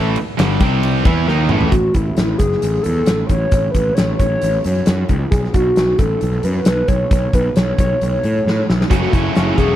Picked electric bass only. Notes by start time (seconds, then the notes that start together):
Already playing: A1
0.40 G1
0.61 C2
1.06 E2
1.29 D#2
1.51 A1
1.72 A1
1.95 A1
2.19 A1
2.40 F#1
2.64 A1
2.86 E2
3.09 A1
3.30 A1
3.52 A1
3.75 A1
3.99 A1
4.20 A1
4.43 A1
4.66 F#2
4.88 F#2
5.09 C#2
5.32 B1
5.55 B1
5.78 B1
5.99 A1
6.23 B1
6.44 F#2
6.67 B1
6.89 B1
7.11 B1
7.33 B1
7.57 B1
7.79 B1
8.02 B1
8.24 A2
8.47 A2
8.70 B1
8.91 F#1
9.13 F#1
9.37 F#1
9.59 E1